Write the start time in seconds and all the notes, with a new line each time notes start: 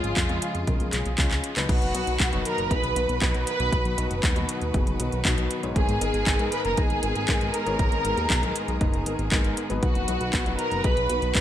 Already playing: C#3 F3 G#3 C#4 F4 G#4
0.04 G#1, closed hi-hat
0.17 F2, kick, clap, closed hi-hat
0.29 F2 C#3 G#3 C#4 F4 G#4, closed hi-hat
0.42 closed hi-hat
0.55 F2, closed hi-hat
0.67 B1 C#3 G#3 C#4 F4 A#4, kick, closed hi-hat
0.80 B1, closed hi-hat
0.93 B1 C#3 G#3 C#4 F4 G#4, clap, closed hi-hat
1.06 B1, closed hi-hat
1.18 C#2 C#3 G#3 C#4 F4 G#4, kick, clap, closed hi-hat
1.31 C#2, clap, closed hi-hat
1.44 closed hi-hat
1.56 C#2 B2 F#3 B3 D#4 B4, clap, closed hi-hat
1.69 B1 D#3 F#3 B3 F#4 B4 F#5, kick, closed hi-hat, crash
1.82 F#1, closed hi-hat
1.95 B1 B2 F#3 B3 D#4 F#4, closed hi-hat
2.07 B1, closed hi-hat
2.20 B1, kick, clap, closed hi-hat
2.33 F#1 B2 F#3 B3 D#4 F#4, closed hi-hat
2.45 A#4 A#5, closed hi-hat
2.58 F#1, closed hi-hat
2.71 B1 B2 F#3 B3 D#4 G#4 B4 B5, kick, closed hi-hat
2.83 B1, closed hi-hat
2.96 B1 B2 F#3 B3 D#4 F#4, closed hi-hat
3.09 B1, closed hi-hat
3.22 B1 B2 F#3 B3 D#4 F#4, kick, clap, closed hi-hat
3.34 B1, closed hi-hat
3.47 B4 B5, closed hi-hat
3.60 B1 B2 F#3 B3 D#4 B4, closed hi-hat
3.72 B1, kick, closed hi-hat
3.85 B1, closed hi-hat
3.98 B1 B2 F#3 B3 D#4 F#4, closed hi-hat
4.11 F#1, closed hi-hat
4.23 D#2, kick, clap, closed hi-hat
4.36 D#2 B2 F#3 B3 D#4 F#4, closed hi-hat
4.49 closed hi-hat
4.61 D#2, closed hi-hat
4.74 F#1 B2 F#3 B3 D#4 G#4, kick, closed hi-hat
4.87 F#1, closed hi-hat
5.00 B1 B2 F#3 B3 D#4 F#4, closed hi-hat
5.12 B1, closed hi-hat
5.25 B1 B2 F#3 B3 D#4 F#4, kick, clap, closed hi-hat
5.38 B1, closed hi-hat
5.51 closed hi-hat
5.63 B1 G#2 B3 D#4 G#4 C#5, closed hi-hat
5.76 G#1 G#3 G#4 A#4 G#5, kick, closed hi-hat
5.89 G#2, closed hi-hat
6.01 G#1 G#2 B3 D#4 G#4 A#4, closed hi-hat
6.14 G#1, closed hi-hat
6.27 G#1, kick, clap, closed hi-hat
6.39 G#2 B3 D#4 G#4 A#4, closed hi-hat
6.52 B4 B5, closed hi-hat
6.65 F#1 A#4 A#5, closed hi-hat
6.77 G#1 G#2 B3 D#4 G#4 B4 G#5, kick, closed hi-hat
6.90 G#1, closed hi-hat
7.03 G#1 G#2 B3 D#4 G#4 A#4, closed hi-hat
7.16 G#1, closed hi-hat
7.28 G#1 G#2 B3 D#4 G#4 A#4, kick, clap, closed hi-hat
7.41 G#1, closed hi-hat
7.54 A#4 A#5, closed hi-hat
7.67 G#1 G#2 B3 D#4 G#4 C#5, closed hi-hat
7.79 G#1, kick, closed hi-hat
7.92 G#1, closed hi-hat
8.05 G#1 G#2 B3 D#4 G#4 A#4, closed hi-hat
8.17 D#2, closed hi-hat
8.30 B1, kick, clap, closed hi-hat
8.43 B1 G#2 B3 D#4 G#4 A#4, closed hi-hat
8.56 closed hi-hat
8.68 B1, closed hi-hat
8.81 F#1 G#2 B3 D#4 G#4 B4, kick, closed hi-hat
8.94 F#1, closed hi-hat
9.06 G#1 G#2 B3 D#4 G#4 A#4, closed hi-hat
9.19 G#1, closed hi-hat
9.32 G#1 G#2 B3 D#4 G#4 A#4, kick, clap, closed hi-hat
9.44 G#1, closed hi-hat
9.57 closed hi-hat
9.70 G#1 B2 F#3 B3 D#4 B4, closed hi-hat
9.82 B1 F#3 F#4 B4 F#5, kick, closed hi-hat
9.95 F#1, closed hi-hat
10.08 B1 B2 F#3 B3 D#4 F#4, closed hi-hat
10.21 B1, closed hi-hat
10.33 B1, kick, clap, closed hi-hat
10.46 F#1 B2 F#3 B3 D#4 F#4, closed hi-hat
10.59 A#4 A#5, closed hi-hat
10.71 F#1, closed hi-hat
10.84 B1 B2 F#3 B3 D#4 G#4 B4 B5, kick, closed hi-hat
10.97 B1, closed hi-hat
11.10 B1 B2 F#3 B3 D#4 F#4, closed hi-hat
11.22 B1, closed hi-hat
11.35 B1 B2 F#3 B3 D#4 F#4, kick, clap, closed hi-hat